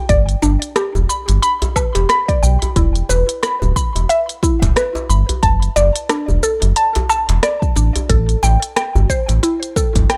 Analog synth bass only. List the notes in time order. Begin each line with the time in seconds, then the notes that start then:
0.09 G1
0.43 G1
0.95 E1
1.28 G1
1.95 E1
2.43 B1
2.76 E1
3.09 E1
3.62 D1
3.95 E1
4.62 D1
5.09 G1
5.43 F#1
5.76 F#1
6.29 E1
6.62 F#1
7.29 E1
7.76 A1
8.10 A1
8.43 A1
8.95 G1
9.29 A1
9.95 G1